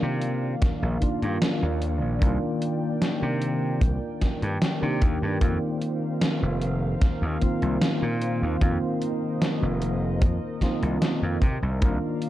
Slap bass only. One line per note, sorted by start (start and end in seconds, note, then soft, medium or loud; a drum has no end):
0.02 0.54 C3 medium
0.62 muted slap bass stroke soft
0.82 0.97 A#1 medium
1.22 1.37 G2 loud
1.62 2.02 D#2 loud
2.02 2.17 A#1 medium
2.22 2.37 C2 loud
3.22 3.83 C3 medium
3.81 3.97 C2 loud
4.42 4.57 G2 loud
4.82 5.03 C3 loud
5.02 5.17 D#2 medium
5.22 5.37 G2 medium
5.41 5.57 F2 loud
6.42 6.94 F1 medium
7.22 7.37 D#2 medium
7.62 7.77 C2 loud
8.02 8.44 A#2 loud
8.42 8.57 D#2 medium
8.61 8.77 F2 loud
9.62 10.23 F1 medium
10.22 10.37 F2 medium
10.82 10.97 C2 loud
11.22 11.37 F2 loud
11.42 11.57 C3 medium
11.62 11.77 C2 medium
11.82 11.97 C2 loud